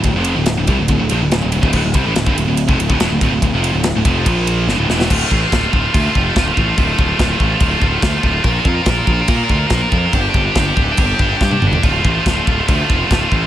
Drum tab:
CC |----------------|x---------------|----------------|x---x---x---x---|
RD |x-x-x-x-x-x-x-x-|--x-x-x-x-x-x-x-|x-x-x-x-x-x-----|----------------|
SD |----o-------o---|----o-------o---|----o-------o-oo|----o-------o---|
T1 |----------------|----------------|----------------|----------------|
T2 |----------------|----------------|----------------|----------------|
FT |----------------|----------------|----------------|----------------|
BD |o-----o-o------o|o-o--o---o-o--o-|o-----o-o-------|o-o-o-o-o-o-o-o-|

CC |x---x---x---x---|x---x---x---x---|x---x---x-------|x---x---x---x---|
RD |----------------|----------------|----------------|----------------|
SD |----o-------o---|----o-------o---|----o-------o---|----o-------o---|
T1 |----------------|----------------|-------------o--|----------------|
T2 |----------------|----------------|--------------o-|----------------|
FT |----------------|----------------|---------------o|----------------|
BD |o-o-o-o-o-o-o-o-|o-o-o-o-o-o-o-o-|o-o-o-o-o-o-o---|o-o-o-o-o-o-o-o-|